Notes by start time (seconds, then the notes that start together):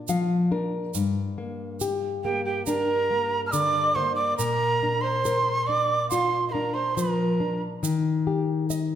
Already playing: A#2
0.08 F3 F5, shaker
0.51 D4 A#4
0.94 G2, shaker
1.38 A#3
1.80 G4, shaker
2.24 A#3 G4 G5
2.45 G4 G5
2.66 D4 A#4 A#5, shaker
3.11 A#3
3.46 A5 F6
3.52 D3 D5 D6, shaker
3.94 A#3 C5 C6
4.16 D5 D6
4.37 A#2 A#4 A#5, shaker
4.83 D4
5.01 C5 C6
5.25 A#4, shaker
5.66 D4 D5 D6
6.09 F4 F5 C6, shaker
6.48 A#4 D#5 C6
6.52 D4 A#5
6.74 C5 C6
6.96 F3 A#4 A#5, shaker
7.40 D4
7.83 D#3, shaker
8.27 G4
8.70 D#5, shaker